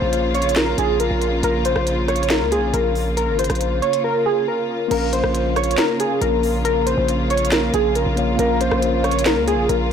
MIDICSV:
0, 0, Header, 1, 6, 480
1, 0, Start_track
1, 0, Key_signature, -5, "minor"
1, 0, Tempo, 434783
1, 1581, Time_signature, 4, 2, 24, 8
1, 10962, End_track
2, 0, Start_track
2, 0, Title_t, "Synth keys"
2, 0, Program_c, 0, 88
2, 0, Note_on_c, 0, 72, 84
2, 351, Note_off_c, 0, 72, 0
2, 384, Note_on_c, 0, 73, 81
2, 607, Note_off_c, 0, 73, 0
2, 625, Note_on_c, 0, 70, 88
2, 848, Note_off_c, 0, 70, 0
2, 867, Note_on_c, 0, 68, 82
2, 1089, Note_off_c, 0, 68, 0
2, 1104, Note_on_c, 0, 70, 76
2, 1554, Note_off_c, 0, 70, 0
2, 1589, Note_on_c, 0, 70, 94
2, 1810, Note_off_c, 0, 70, 0
2, 1826, Note_on_c, 0, 72, 80
2, 2275, Note_off_c, 0, 72, 0
2, 2298, Note_on_c, 0, 73, 76
2, 2524, Note_off_c, 0, 73, 0
2, 2541, Note_on_c, 0, 70, 91
2, 2766, Note_off_c, 0, 70, 0
2, 2782, Note_on_c, 0, 68, 93
2, 3006, Note_off_c, 0, 68, 0
2, 3020, Note_on_c, 0, 70, 77
2, 3472, Note_off_c, 0, 70, 0
2, 3499, Note_on_c, 0, 70, 94
2, 3725, Note_off_c, 0, 70, 0
2, 3744, Note_on_c, 0, 72, 77
2, 4194, Note_off_c, 0, 72, 0
2, 4218, Note_on_c, 0, 73, 84
2, 4444, Note_off_c, 0, 73, 0
2, 4463, Note_on_c, 0, 70, 88
2, 4687, Note_off_c, 0, 70, 0
2, 4701, Note_on_c, 0, 68, 85
2, 4926, Note_off_c, 0, 68, 0
2, 4945, Note_on_c, 0, 70, 75
2, 5395, Note_off_c, 0, 70, 0
2, 5421, Note_on_c, 0, 70, 103
2, 5646, Note_off_c, 0, 70, 0
2, 5662, Note_on_c, 0, 72, 90
2, 6113, Note_off_c, 0, 72, 0
2, 6141, Note_on_c, 0, 73, 89
2, 6366, Note_off_c, 0, 73, 0
2, 6384, Note_on_c, 0, 70, 95
2, 6608, Note_off_c, 0, 70, 0
2, 6625, Note_on_c, 0, 68, 88
2, 6848, Note_off_c, 0, 68, 0
2, 6862, Note_on_c, 0, 70, 83
2, 7313, Note_off_c, 0, 70, 0
2, 7339, Note_on_c, 0, 70, 105
2, 7565, Note_off_c, 0, 70, 0
2, 7578, Note_on_c, 0, 72, 81
2, 8031, Note_off_c, 0, 72, 0
2, 8063, Note_on_c, 0, 73, 84
2, 8287, Note_off_c, 0, 73, 0
2, 8304, Note_on_c, 0, 70, 89
2, 8528, Note_off_c, 0, 70, 0
2, 8547, Note_on_c, 0, 68, 86
2, 8769, Note_off_c, 0, 68, 0
2, 8784, Note_on_c, 0, 70, 77
2, 9234, Note_off_c, 0, 70, 0
2, 9269, Note_on_c, 0, 70, 98
2, 9490, Note_off_c, 0, 70, 0
2, 9506, Note_on_c, 0, 72, 81
2, 9955, Note_off_c, 0, 72, 0
2, 9978, Note_on_c, 0, 73, 77
2, 10204, Note_off_c, 0, 73, 0
2, 10222, Note_on_c, 0, 70, 93
2, 10446, Note_off_c, 0, 70, 0
2, 10461, Note_on_c, 0, 68, 95
2, 10686, Note_off_c, 0, 68, 0
2, 10700, Note_on_c, 0, 70, 75
2, 10962, Note_off_c, 0, 70, 0
2, 10962, End_track
3, 0, Start_track
3, 0, Title_t, "Tine electric piano"
3, 0, Program_c, 1, 4
3, 5390, Note_on_c, 1, 58, 72
3, 5412, Note_on_c, 1, 70, 61
3, 5434, Note_on_c, 1, 61, 65
3, 5456, Note_on_c, 1, 77, 75
3, 5649, Control_c, 1, 64, 127
3, 8961, Note_off_c, 1, 58, 0
3, 8972, Note_off_c, 1, 70, 0
3, 8984, Note_off_c, 1, 61, 0
3, 8995, Note_off_c, 1, 77, 0
3, 9008, Note_on_c, 1, 58, 55
3, 9019, Note_on_c, 1, 70, 48
3, 9030, Note_on_c, 1, 73, 50
3, 9041, Note_on_c, 1, 77, 59
3, 9220, Note_off_c, 1, 58, 0
3, 9234, Note_on_c, 1, 58, 74
3, 9243, Note_off_c, 1, 70, 0
3, 9256, Note_on_c, 1, 70, 62
3, 9266, Note_off_c, 1, 73, 0
3, 9271, Note_off_c, 1, 77, 0
3, 9278, Control_c, 1, 64, 0
3, 9278, Note_on_c, 1, 61, 68
3, 9300, Note_on_c, 1, 77, 81
3, 9460, Control_c, 1, 64, 127
3, 10962, Note_off_c, 1, 58, 0
3, 10962, Note_off_c, 1, 61, 0
3, 10962, Note_off_c, 1, 70, 0
3, 10962, Note_off_c, 1, 77, 0
3, 10962, End_track
4, 0, Start_track
4, 0, Title_t, "String section"
4, 0, Program_c, 2, 48
4, 0, Note_on_c, 2, 49, 80
4, 0, Note_on_c, 2, 58, 72
4, 0, Note_on_c, 2, 65, 91
4, 5377, Note_off_c, 2, 49, 0
4, 5377, Note_off_c, 2, 58, 0
4, 5377, Note_off_c, 2, 65, 0
4, 5420, Note_on_c, 2, 49, 82
4, 5421, Note_on_c, 2, 58, 74
4, 5421, Note_on_c, 2, 65, 87
4, 10962, Note_off_c, 2, 49, 0
4, 10962, Note_off_c, 2, 58, 0
4, 10962, Note_off_c, 2, 65, 0
4, 10962, End_track
5, 0, Start_track
5, 0, Title_t, "808-style bass"
5, 0, Program_c, 3, 38
5, 22, Note_on_c, 3, 34, 98
5, 828, Note_off_c, 3, 34, 0
5, 862, Note_on_c, 3, 34, 102
5, 1207, Note_off_c, 3, 34, 0
5, 1221, Note_on_c, 3, 34, 99
5, 1567, Note_off_c, 3, 34, 0
5, 1581, Note_on_c, 3, 34, 111
5, 1927, Note_off_c, 3, 34, 0
5, 1941, Note_on_c, 3, 34, 106
5, 2661, Note_on_c, 3, 37, 101
5, 2678, Note_off_c, 3, 34, 0
5, 2841, Note_on_c, 3, 34, 99
5, 2858, Note_off_c, 3, 37, 0
5, 3012, Note_off_c, 3, 34, 0
5, 3021, Note_on_c, 3, 34, 111
5, 3621, Note_on_c, 3, 32, 104
5, 3638, Note_off_c, 3, 34, 0
5, 3849, Note_off_c, 3, 32, 0
5, 3861, Note_on_c, 3, 34, 100
5, 4207, Note_off_c, 3, 34, 0
5, 5422, Note_on_c, 3, 34, 117
5, 5767, Note_off_c, 3, 34, 0
5, 5782, Note_on_c, 3, 34, 104
5, 6357, Note_off_c, 3, 34, 0
5, 6861, Note_on_c, 3, 34, 108
5, 7668, Note_off_c, 3, 34, 0
5, 7701, Note_on_c, 3, 34, 101
5, 8508, Note_off_c, 3, 34, 0
5, 8542, Note_on_c, 3, 34, 104
5, 8887, Note_off_c, 3, 34, 0
5, 8902, Note_on_c, 3, 34, 99
5, 9247, Note_off_c, 3, 34, 0
5, 9261, Note_on_c, 3, 34, 113
5, 9607, Note_off_c, 3, 34, 0
5, 9622, Note_on_c, 3, 34, 108
5, 10342, Note_on_c, 3, 37, 101
5, 10358, Note_off_c, 3, 34, 0
5, 10522, Note_on_c, 3, 34, 103
5, 10538, Note_off_c, 3, 37, 0
5, 10693, Note_off_c, 3, 34, 0
5, 10702, Note_on_c, 3, 34, 110
5, 10962, Note_off_c, 3, 34, 0
5, 10962, End_track
6, 0, Start_track
6, 0, Title_t, "Drums"
6, 141, Note_on_c, 9, 42, 82
6, 252, Note_off_c, 9, 42, 0
6, 382, Note_on_c, 9, 42, 45
6, 462, Note_off_c, 9, 42, 0
6, 462, Note_on_c, 9, 42, 58
6, 541, Note_off_c, 9, 42, 0
6, 541, Note_on_c, 9, 42, 77
6, 616, Note_on_c, 9, 39, 89
6, 621, Note_off_c, 9, 42, 0
6, 621, Note_on_c, 9, 38, 116
6, 621, Note_on_c, 9, 42, 78
6, 727, Note_off_c, 9, 39, 0
6, 731, Note_off_c, 9, 42, 0
6, 732, Note_off_c, 9, 38, 0
6, 861, Note_on_c, 9, 42, 88
6, 972, Note_off_c, 9, 42, 0
6, 1102, Note_on_c, 9, 42, 84
6, 1212, Note_off_c, 9, 42, 0
6, 1341, Note_on_c, 9, 42, 59
6, 1452, Note_off_c, 9, 42, 0
6, 1581, Note_on_c, 9, 42, 78
6, 1692, Note_off_c, 9, 42, 0
6, 1821, Note_on_c, 9, 42, 83
6, 1932, Note_off_c, 9, 42, 0
6, 1940, Note_on_c, 9, 37, 88
6, 2051, Note_off_c, 9, 37, 0
6, 2061, Note_on_c, 9, 42, 83
6, 2172, Note_off_c, 9, 42, 0
6, 2301, Note_on_c, 9, 37, 60
6, 2301, Note_on_c, 9, 42, 43
6, 2381, Note_off_c, 9, 42, 0
6, 2381, Note_on_c, 9, 42, 60
6, 2411, Note_off_c, 9, 37, 0
6, 2461, Note_off_c, 9, 42, 0
6, 2461, Note_on_c, 9, 42, 71
6, 2536, Note_on_c, 9, 39, 90
6, 2541, Note_off_c, 9, 42, 0
6, 2541, Note_on_c, 9, 38, 113
6, 2541, Note_on_c, 9, 42, 78
6, 2647, Note_off_c, 9, 39, 0
6, 2651, Note_off_c, 9, 42, 0
6, 2652, Note_off_c, 9, 38, 0
6, 2781, Note_on_c, 9, 42, 90
6, 2891, Note_off_c, 9, 42, 0
6, 3021, Note_on_c, 9, 42, 81
6, 3131, Note_off_c, 9, 42, 0
6, 3261, Note_on_c, 9, 46, 43
6, 3372, Note_off_c, 9, 46, 0
6, 3501, Note_on_c, 9, 42, 80
6, 3612, Note_off_c, 9, 42, 0
6, 3741, Note_on_c, 9, 42, 82
6, 3801, Note_off_c, 9, 42, 0
6, 3801, Note_on_c, 9, 42, 73
6, 3861, Note_off_c, 9, 42, 0
6, 3861, Note_on_c, 9, 37, 90
6, 3861, Note_on_c, 9, 42, 60
6, 3921, Note_off_c, 9, 42, 0
6, 3921, Note_on_c, 9, 42, 45
6, 3971, Note_off_c, 9, 37, 0
6, 3981, Note_off_c, 9, 42, 0
6, 3981, Note_on_c, 9, 42, 80
6, 4092, Note_off_c, 9, 42, 0
6, 4222, Note_on_c, 9, 42, 44
6, 4332, Note_off_c, 9, 42, 0
6, 4341, Note_on_c, 9, 42, 76
6, 4452, Note_off_c, 9, 42, 0
6, 5421, Note_on_c, 9, 42, 78
6, 5421, Note_on_c, 9, 49, 104
6, 5532, Note_off_c, 9, 42, 0
6, 5532, Note_off_c, 9, 49, 0
6, 5662, Note_on_c, 9, 42, 83
6, 5772, Note_off_c, 9, 42, 0
6, 5781, Note_on_c, 9, 37, 90
6, 5891, Note_off_c, 9, 37, 0
6, 5901, Note_on_c, 9, 42, 83
6, 6012, Note_off_c, 9, 42, 0
6, 6141, Note_on_c, 9, 37, 62
6, 6142, Note_on_c, 9, 42, 45
6, 6221, Note_off_c, 9, 42, 0
6, 6221, Note_on_c, 9, 42, 61
6, 6252, Note_off_c, 9, 37, 0
6, 6302, Note_off_c, 9, 42, 0
6, 6302, Note_on_c, 9, 42, 76
6, 6377, Note_on_c, 9, 39, 94
6, 6381, Note_off_c, 9, 42, 0
6, 6381, Note_on_c, 9, 42, 81
6, 6382, Note_on_c, 9, 38, 117
6, 6487, Note_off_c, 9, 39, 0
6, 6492, Note_off_c, 9, 38, 0
6, 6492, Note_off_c, 9, 42, 0
6, 6622, Note_on_c, 9, 42, 89
6, 6732, Note_off_c, 9, 42, 0
6, 6862, Note_on_c, 9, 42, 85
6, 6972, Note_off_c, 9, 42, 0
6, 7102, Note_on_c, 9, 46, 44
6, 7212, Note_off_c, 9, 46, 0
6, 7342, Note_on_c, 9, 42, 82
6, 7452, Note_off_c, 9, 42, 0
6, 7581, Note_on_c, 9, 42, 85
6, 7692, Note_off_c, 9, 42, 0
6, 7822, Note_on_c, 9, 42, 83
6, 7932, Note_off_c, 9, 42, 0
6, 8062, Note_on_c, 9, 42, 46
6, 8142, Note_off_c, 9, 42, 0
6, 8142, Note_on_c, 9, 42, 62
6, 8222, Note_off_c, 9, 42, 0
6, 8222, Note_on_c, 9, 42, 76
6, 8297, Note_on_c, 9, 39, 91
6, 8302, Note_off_c, 9, 42, 0
6, 8302, Note_on_c, 9, 38, 116
6, 8302, Note_on_c, 9, 42, 81
6, 8408, Note_off_c, 9, 39, 0
6, 8412, Note_off_c, 9, 38, 0
6, 8412, Note_off_c, 9, 42, 0
6, 8542, Note_on_c, 9, 42, 91
6, 8652, Note_off_c, 9, 42, 0
6, 8782, Note_on_c, 9, 42, 85
6, 8892, Note_off_c, 9, 42, 0
6, 9022, Note_on_c, 9, 42, 61
6, 9132, Note_off_c, 9, 42, 0
6, 9262, Note_on_c, 9, 42, 83
6, 9372, Note_off_c, 9, 42, 0
6, 9502, Note_on_c, 9, 42, 80
6, 9612, Note_off_c, 9, 42, 0
6, 9621, Note_on_c, 9, 37, 90
6, 9732, Note_off_c, 9, 37, 0
6, 9742, Note_on_c, 9, 42, 86
6, 9852, Note_off_c, 9, 42, 0
6, 9982, Note_on_c, 9, 37, 65
6, 9982, Note_on_c, 9, 42, 44
6, 10062, Note_off_c, 9, 42, 0
6, 10062, Note_on_c, 9, 42, 60
6, 10092, Note_off_c, 9, 37, 0
6, 10142, Note_off_c, 9, 42, 0
6, 10142, Note_on_c, 9, 42, 78
6, 10217, Note_on_c, 9, 39, 89
6, 10222, Note_off_c, 9, 42, 0
6, 10222, Note_on_c, 9, 38, 111
6, 10222, Note_on_c, 9, 42, 83
6, 10328, Note_off_c, 9, 39, 0
6, 10332, Note_off_c, 9, 42, 0
6, 10333, Note_off_c, 9, 38, 0
6, 10462, Note_on_c, 9, 42, 90
6, 10572, Note_off_c, 9, 42, 0
6, 10702, Note_on_c, 9, 42, 87
6, 10812, Note_off_c, 9, 42, 0
6, 10962, End_track
0, 0, End_of_file